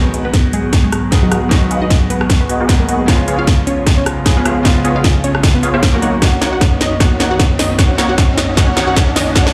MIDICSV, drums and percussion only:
0, 0, Header, 1, 2, 480
1, 0, Start_track
1, 0, Tempo, 392157
1, 1852, Time_signature, 4, 2, 24, 8
1, 11666, End_track
2, 0, Start_track
2, 0, Title_t, "Drums"
2, 170, Note_on_c, 9, 42, 69
2, 292, Note_off_c, 9, 42, 0
2, 410, Note_on_c, 9, 36, 95
2, 411, Note_on_c, 9, 38, 46
2, 411, Note_on_c, 9, 42, 79
2, 533, Note_off_c, 9, 36, 0
2, 534, Note_off_c, 9, 38, 0
2, 534, Note_off_c, 9, 42, 0
2, 651, Note_on_c, 9, 42, 68
2, 774, Note_off_c, 9, 42, 0
2, 890, Note_on_c, 9, 36, 96
2, 891, Note_on_c, 9, 38, 51
2, 891, Note_on_c, 9, 42, 84
2, 1012, Note_off_c, 9, 36, 0
2, 1014, Note_off_c, 9, 38, 0
2, 1014, Note_off_c, 9, 42, 0
2, 1132, Note_on_c, 9, 37, 75
2, 1132, Note_on_c, 9, 42, 65
2, 1254, Note_off_c, 9, 37, 0
2, 1254, Note_off_c, 9, 42, 0
2, 1370, Note_on_c, 9, 36, 97
2, 1371, Note_on_c, 9, 38, 50
2, 1371, Note_on_c, 9, 42, 80
2, 1493, Note_off_c, 9, 36, 0
2, 1494, Note_off_c, 9, 38, 0
2, 1494, Note_off_c, 9, 42, 0
2, 1610, Note_on_c, 9, 37, 76
2, 1610, Note_on_c, 9, 42, 69
2, 1733, Note_off_c, 9, 37, 0
2, 1733, Note_off_c, 9, 42, 0
2, 1850, Note_on_c, 9, 36, 96
2, 1851, Note_on_c, 9, 38, 53
2, 1851, Note_on_c, 9, 42, 81
2, 1972, Note_off_c, 9, 36, 0
2, 1973, Note_off_c, 9, 38, 0
2, 1973, Note_off_c, 9, 42, 0
2, 2091, Note_on_c, 9, 42, 67
2, 2213, Note_off_c, 9, 42, 0
2, 2330, Note_on_c, 9, 36, 96
2, 2333, Note_on_c, 9, 38, 53
2, 2333, Note_on_c, 9, 42, 78
2, 2452, Note_off_c, 9, 36, 0
2, 2455, Note_off_c, 9, 38, 0
2, 2455, Note_off_c, 9, 42, 0
2, 2572, Note_on_c, 9, 42, 65
2, 2695, Note_off_c, 9, 42, 0
2, 2704, Note_on_c, 9, 37, 73
2, 2810, Note_on_c, 9, 36, 97
2, 2813, Note_on_c, 9, 38, 57
2, 2813, Note_on_c, 9, 42, 81
2, 2827, Note_off_c, 9, 37, 0
2, 2932, Note_off_c, 9, 36, 0
2, 2936, Note_off_c, 9, 38, 0
2, 2936, Note_off_c, 9, 42, 0
2, 3054, Note_on_c, 9, 42, 67
2, 3176, Note_off_c, 9, 42, 0
2, 3291, Note_on_c, 9, 36, 97
2, 3293, Note_on_c, 9, 38, 55
2, 3293, Note_on_c, 9, 42, 82
2, 3413, Note_off_c, 9, 36, 0
2, 3415, Note_off_c, 9, 38, 0
2, 3415, Note_off_c, 9, 42, 0
2, 3532, Note_on_c, 9, 42, 67
2, 3654, Note_off_c, 9, 42, 0
2, 3771, Note_on_c, 9, 36, 98
2, 3772, Note_on_c, 9, 38, 60
2, 3772, Note_on_c, 9, 42, 75
2, 3893, Note_off_c, 9, 36, 0
2, 3894, Note_off_c, 9, 38, 0
2, 3894, Note_off_c, 9, 42, 0
2, 4012, Note_on_c, 9, 42, 66
2, 4135, Note_off_c, 9, 42, 0
2, 4251, Note_on_c, 9, 36, 100
2, 4252, Note_on_c, 9, 38, 58
2, 4252, Note_on_c, 9, 42, 72
2, 4373, Note_off_c, 9, 36, 0
2, 4375, Note_off_c, 9, 38, 0
2, 4375, Note_off_c, 9, 42, 0
2, 4493, Note_on_c, 9, 42, 65
2, 4615, Note_off_c, 9, 42, 0
2, 4731, Note_on_c, 9, 36, 99
2, 4732, Note_on_c, 9, 38, 62
2, 4732, Note_on_c, 9, 42, 79
2, 4853, Note_off_c, 9, 36, 0
2, 4855, Note_off_c, 9, 38, 0
2, 4855, Note_off_c, 9, 42, 0
2, 4973, Note_on_c, 9, 37, 78
2, 4973, Note_on_c, 9, 42, 62
2, 5095, Note_off_c, 9, 37, 0
2, 5095, Note_off_c, 9, 42, 0
2, 5211, Note_on_c, 9, 36, 96
2, 5212, Note_on_c, 9, 38, 63
2, 5212, Note_on_c, 9, 42, 77
2, 5333, Note_off_c, 9, 36, 0
2, 5335, Note_off_c, 9, 38, 0
2, 5335, Note_off_c, 9, 42, 0
2, 5453, Note_on_c, 9, 37, 78
2, 5453, Note_on_c, 9, 42, 65
2, 5575, Note_off_c, 9, 37, 0
2, 5575, Note_off_c, 9, 42, 0
2, 5691, Note_on_c, 9, 36, 97
2, 5693, Note_on_c, 9, 38, 66
2, 5693, Note_on_c, 9, 42, 77
2, 5813, Note_off_c, 9, 36, 0
2, 5815, Note_off_c, 9, 38, 0
2, 5815, Note_off_c, 9, 42, 0
2, 5933, Note_on_c, 9, 42, 62
2, 6055, Note_off_c, 9, 42, 0
2, 6171, Note_on_c, 9, 36, 97
2, 6171, Note_on_c, 9, 38, 65
2, 6171, Note_on_c, 9, 42, 72
2, 6293, Note_off_c, 9, 36, 0
2, 6294, Note_off_c, 9, 38, 0
2, 6294, Note_off_c, 9, 42, 0
2, 6413, Note_on_c, 9, 42, 63
2, 6535, Note_off_c, 9, 42, 0
2, 6545, Note_on_c, 9, 37, 81
2, 6651, Note_on_c, 9, 36, 100
2, 6653, Note_on_c, 9, 38, 73
2, 6653, Note_on_c, 9, 42, 76
2, 6667, Note_off_c, 9, 37, 0
2, 6773, Note_off_c, 9, 36, 0
2, 6775, Note_off_c, 9, 38, 0
2, 6775, Note_off_c, 9, 42, 0
2, 6893, Note_on_c, 9, 42, 62
2, 7015, Note_off_c, 9, 42, 0
2, 7132, Note_on_c, 9, 36, 98
2, 7133, Note_on_c, 9, 38, 73
2, 7133, Note_on_c, 9, 42, 75
2, 7254, Note_off_c, 9, 36, 0
2, 7255, Note_off_c, 9, 38, 0
2, 7255, Note_off_c, 9, 42, 0
2, 7373, Note_on_c, 9, 42, 63
2, 7496, Note_off_c, 9, 42, 0
2, 7612, Note_on_c, 9, 36, 99
2, 7613, Note_on_c, 9, 38, 72
2, 7613, Note_on_c, 9, 42, 77
2, 7734, Note_off_c, 9, 36, 0
2, 7735, Note_off_c, 9, 38, 0
2, 7735, Note_off_c, 9, 42, 0
2, 7853, Note_on_c, 9, 38, 76
2, 7853, Note_on_c, 9, 42, 63
2, 7975, Note_off_c, 9, 38, 0
2, 7975, Note_off_c, 9, 42, 0
2, 8092, Note_on_c, 9, 36, 97
2, 8093, Note_on_c, 9, 38, 75
2, 8093, Note_on_c, 9, 42, 73
2, 8214, Note_off_c, 9, 36, 0
2, 8216, Note_off_c, 9, 38, 0
2, 8216, Note_off_c, 9, 42, 0
2, 8333, Note_on_c, 9, 38, 78
2, 8333, Note_on_c, 9, 42, 65
2, 8455, Note_off_c, 9, 38, 0
2, 8455, Note_off_c, 9, 42, 0
2, 8572, Note_on_c, 9, 36, 102
2, 8573, Note_on_c, 9, 38, 79
2, 8573, Note_on_c, 9, 42, 79
2, 8694, Note_off_c, 9, 36, 0
2, 8695, Note_off_c, 9, 38, 0
2, 8695, Note_off_c, 9, 42, 0
2, 8814, Note_on_c, 9, 38, 80
2, 8814, Note_on_c, 9, 42, 61
2, 8936, Note_off_c, 9, 38, 0
2, 8936, Note_off_c, 9, 42, 0
2, 9051, Note_on_c, 9, 36, 98
2, 9052, Note_on_c, 9, 38, 83
2, 9052, Note_on_c, 9, 42, 77
2, 9174, Note_off_c, 9, 36, 0
2, 9175, Note_off_c, 9, 38, 0
2, 9175, Note_off_c, 9, 42, 0
2, 9292, Note_on_c, 9, 38, 81
2, 9292, Note_on_c, 9, 46, 96
2, 9414, Note_off_c, 9, 38, 0
2, 9414, Note_off_c, 9, 46, 0
2, 9531, Note_on_c, 9, 36, 99
2, 9531, Note_on_c, 9, 38, 82
2, 9531, Note_on_c, 9, 42, 80
2, 9653, Note_off_c, 9, 38, 0
2, 9653, Note_off_c, 9, 42, 0
2, 9654, Note_off_c, 9, 36, 0
2, 9772, Note_on_c, 9, 38, 85
2, 9772, Note_on_c, 9, 42, 68
2, 9894, Note_off_c, 9, 38, 0
2, 9894, Note_off_c, 9, 42, 0
2, 10011, Note_on_c, 9, 36, 101
2, 10011, Note_on_c, 9, 38, 84
2, 10011, Note_on_c, 9, 42, 76
2, 10134, Note_off_c, 9, 36, 0
2, 10134, Note_off_c, 9, 38, 0
2, 10134, Note_off_c, 9, 42, 0
2, 10252, Note_on_c, 9, 38, 88
2, 10252, Note_on_c, 9, 42, 66
2, 10375, Note_off_c, 9, 38, 0
2, 10375, Note_off_c, 9, 42, 0
2, 10492, Note_on_c, 9, 36, 101
2, 10492, Note_on_c, 9, 38, 90
2, 10492, Note_on_c, 9, 42, 81
2, 10614, Note_off_c, 9, 36, 0
2, 10615, Note_off_c, 9, 38, 0
2, 10615, Note_off_c, 9, 42, 0
2, 10732, Note_on_c, 9, 38, 88
2, 10732, Note_on_c, 9, 42, 65
2, 10854, Note_off_c, 9, 38, 0
2, 10854, Note_off_c, 9, 42, 0
2, 10971, Note_on_c, 9, 36, 100
2, 10973, Note_on_c, 9, 38, 91
2, 10973, Note_on_c, 9, 42, 81
2, 11094, Note_off_c, 9, 36, 0
2, 11096, Note_off_c, 9, 38, 0
2, 11096, Note_off_c, 9, 42, 0
2, 11213, Note_on_c, 9, 38, 93
2, 11213, Note_on_c, 9, 46, 99
2, 11335, Note_off_c, 9, 38, 0
2, 11335, Note_off_c, 9, 46, 0
2, 11451, Note_on_c, 9, 36, 99
2, 11452, Note_on_c, 9, 38, 94
2, 11452, Note_on_c, 9, 42, 84
2, 11574, Note_off_c, 9, 36, 0
2, 11575, Note_off_c, 9, 38, 0
2, 11575, Note_off_c, 9, 42, 0
2, 11587, Note_on_c, 9, 38, 82
2, 11666, Note_off_c, 9, 38, 0
2, 11666, End_track
0, 0, End_of_file